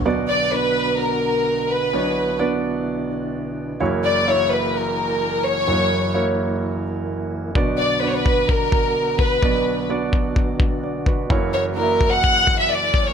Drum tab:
BD |--------|--------|--------|--------|

BD |o--ooo-o|o--ooo-o|o--ooo-o|